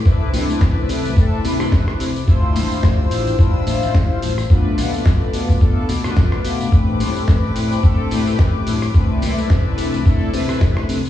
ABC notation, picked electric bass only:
X:1
M:4/4
L:1/16
Q:"Swing 16ths" 1/4=108
K:C
V:1 name="Picked electric bass" clef=bass
C,,2 C, z C,,2 C,2 C,, z C, C, C,, z C,2 | D,,2 A,,, z D,,2 A,,,2 D,, z A,,, A,,, D,, z A,,,2 | B,,,2 B,, z B,,,2 B,,2 B,,, z B,, B,, B,,,2 B,,2 | A,,,2 A,, z A,,,2 A,,2 A,,, z A,, A,, A,,, z A,,2 |
C,,2 C, z C,,2 C,2 C,, z C, C, C,, z C,2 |]